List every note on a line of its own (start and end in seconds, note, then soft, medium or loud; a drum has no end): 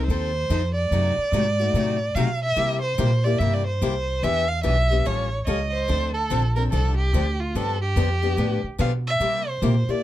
0.07 0.48 D#2 medium
0.07 0.30 F3 medium
0.07 0.31 C4 medium
0.07 0.31 D#4 medium
0.07 0.31 A4 medium
0.07 0.71 C5 loud
0.50 0.90 F2 medium
0.50 0.61 F3 medium
0.50 0.61 C4 medium
0.50 0.62 D#4 medium
0.50 0.62 A4 medium
0.75 2.16 D5 loud
0.91 1.16 F#2 medium
0.91 1.13 C3 medium
0.91 1.13 F#3 medium
0.91 1.13 A3 medium
0.91 1.14 D#4 medium
0.91 1.14 F#4 medium
1.17 muted upright bass stroke soft
1.32 1.73 G#2 medium
1.32 1.44 C3 medium
1.32 1.45 F#3 medium
1.32 1.44 A3 medium
1.32 1.45 D#4 medium
1.32 1.45 F#4 medium
1.60 1.74 A3 soft
1.60 1.75 D#4 medium
1.60 1.74 F#4 medium
1.74 2.14 A2 medium
1.74 1.96 C3 medium
1.74 1.96 F#3 medium
1.74 1.96 A3 medium
1.74 1.96 D#4 medium
1.74 1.97 F#4 medium
2.15 2.55 B2 medium
2.15 2.27 C3 medium
2.15 2.27 F#3 medium
2.15 2.27 A3 medium
2.15 2.27 D#4 medium
2.15 2.28 F#4 medium
2.15 2.41 F5 medium
2.42 2.81 E5 loud
2.56 2.78 C3 medium
2.56 2.97 C3 medium
2.56 2.78 G3 medium
2.56 2.78 A#3 medium
2.56 2.78 E4 medium
2.56 2.79 G4 medium
2.82 3.26 C5 medium
2.98 3.39 A#2 medium
2.98 3.10 C3 medium
2.98 3.10 G3 medium
2.98 3.10 A#3 medium
2.98 3.10 E4 medium
2.98 3.10 G4 medium
3.24 3.39 A#3 soft
3.24 3.40 E4 soft
3.24 3.40 G4 medium
3.24 3.40 D5 loud
3.39 3.80 G2 medium
3.39 3.62 C3 medium
3.39 3.62 G3 medium
3.39 3.62 A#3 medium
3.39 3.62 E4 medium
3.39 3.62 G4 medium
3.39 3.55 E5 medium
3.54 3.67 D5 medium
3.67 4.25 C5 medium
3.82 4.22 C2 medium
3.82 3.93 C3 medium
3.82 3.93 G3 medium
3.82 3.93 A#3 medium
3.82 3.93 E4 medium
3.82 3.93 G4 medium
4.23 4.63 E2 medium
4.23 4.44 E3 medium
4.23 4.45 B3 medium
4.23 4.45 D4 medium
4.23 4.45 G4 medium
4.23 4.49 E5 medium
4.48 4.64 F5 medium
4.63 5.05 B1 medium
4.63 4.75 E3 medium
4.63 4.76 B3 medium
4.63 4.76 D4 medium
4.63 4.76 G4 medium
4.63 5.07 E5 loud
4.90 5.06 B3 soft
4.90 5.06 D4 medium
4.90 5.05 G4 medium
5.05 5.46 A1 medium
5.05 5.27 F3 medium
5.05 5.27 G3 medium
5.05 5.27 C#4 medium
5.05 5.28 F4 medium
5.05 5.28 A4 medium
5.05 5.44 C#5 medium
5.44 5.87 C#2 medium
5.44 5.58 F3 medium
5.44 5.58 G3 medium
5.44 5.59 C#4 medium
5.44 5.59 F4 medium
5.44 5.59 A4 medium
5.44 5.48 C#5 medium
5.44 5.74 D#5 medium
5.72 6.13 C5 loud
5.88 6.29 D2 medium
5.88 6.10 D3 medium
5.88 6.10 F3 medium
5.88 6.10 C4 medium
5.88 6.10 D4 medium
5.88 6.10 A4 medium
6.14 6.53 A4 medium
6.30 6.71 A#1 medium
6.30 6.42 D3 medium
6.30 6.42 F3 medium
6.30 6.42 C4 medium
6.30 6.42 D4 medium
6.30 6.42 A4 medium
6.56 6.72 C4 soft
6.56 6.71 D4 medium
6.56 6.71 A4 medium
6.56 6.63 A#4 medium
6.71 7.12 C2 medium
6.71 6.93 D3 medium
6.71 6.94 F3 medium
6.71 6.94 C4 medium
6.71 6.94 D4 medium
6.71 6.96 A4 medium
6.71 6.94 A4 medium
6.97 7.42 G4 medium
7.13 7.53 D2 medium
7.13 7.25 D3 medium
7.13 7.25 F3 medium
7.13 7.25 C4 medium
7.13 7.25 D4 medium
7.13 7.26 A4 medium
7.40 7.57 F4 medium
7.55 7.95 G2 medium
7.55 7.76 D3 medium
7.55 7.77 F3 medium
7.55 7.77 B3 medium
7.55 7.77 D4 medium
7.55 7.77 G4 medium
7.55 7.81 A4 medium
7.82 8.60 G4 medium
7.96 8.36 F2 loud
7.96 8.08 D3 medium
7.96 8.08 F3 medium
7.96 8.08 B3 medium
7.96 8.08 D4 medium
7.96 8.08 G4 medium
8.22 8.37 B3 soft
8.22 8.37 D4 medium
8.22 8.37 G4 medium
8.37 8.62 A2 medium
8.37 8.59 D3 medium
8.37 8.59 F3 medium
8.37 8.59 B3 medium
8.37 8.59 D4 medium
8.37 8.59 G4 medium
8.63 muted upright bass stroke soft
8.79 9.19 B2 medium
8.79 8.90 D3 medium
8.79 8.91 F3 medium
8.79 8.91 B3 medium
8.79 8.91 D4 medium
8.79 8.91 G4 medium
8.79 8.92 F5 medium
9.07 9.51 E5 loud
9.20 9.61 C3 medium
9.20 9.42 C3 medium
9.20 9.42 G3 medium
9.20 9.42 A#3 medium
9.20 9.43 E4 medium
9.20 9.43 G4 medium
9.49 9.92 C5 medium
9.62 9.86 A#2 medium
9.62 9.74 C3 medium
9.62 9.74 G3 medium
9.62 9.74 A#3 medium
9.62 9.74 E4 medium
9.62 9.74 G4 medium
9.88 10.03 A#3 soft
9.88 10.03 E4 medium
9.88 10.03 G4 medium
9.88 10.03 D5 medium
9.88 muted upright bass stroke soft